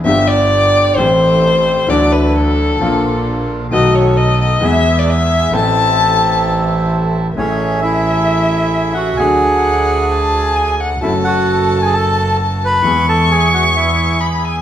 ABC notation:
X:1
M:4/4
L:1/16
Q:1/4=131
K:Am
V:1 name="Violin"
e2 d6 c8 | d2 B2 A8- A2 z2 | ^d2 ^c2 d2 d2 e3 =d e4 | a12 z4 |
[K:A] e16 | f8 a4 g2 f2 | a16 | c'12 b2 g2 |]
V:2 name="Bandoneon"
z16 | z16 | z16 | z16 |
[K:A] [Cc]4 [Ee]8- [Ee]2 [Ff]2 | [Gg]12- [Gg]2 z2 | [Ee]2 [Ff]4- [Ff] [Gg] [Aa]4 z2 [Bb]2- | [Bb]2 [Aa]2 [Gg]2 [Ff]2 [Ee]4 z4 |]
V:3 name="Bandoneon"
[B,FG]8 [A,CG]8 | [^F,DE]8 [_B,D=F]8 | [B,^DA]8 [B,E^G]8 | [CEA]16 |
[K:A] [A,CG]16 | [A,DF]16 | [A,FA]16 | [B,EG]16 |]
V:4 name="Grand piano" clef=bass
[G,,,G,,F,B,DG]8 [A,,,A,,E,A,CG]8 | [D,,D,E,A,D^F]8 [_B,,,_B,,D,=F,_B,=F]8 | [B,,,B,,^D,A,B,^F]8 [E,,E,^G,B,^G]8 | [A,,,A,,E,A,CA]16 |
[K:A] [A,,,A,,E,A,CG]16 | [D,,D,F,A,DF]16 | [F,,F,A,CA]16 | [E,,E,G,B,G]16 |]
V:5 name="Double bass" clef=bass
G,,,8 A,,,8 | D,,8 _B,,,8 | B,,,8 E,,8 | A,,,16 |
[K:A] A,,,16 | D,,16 | F,,,16 | E,,16 |]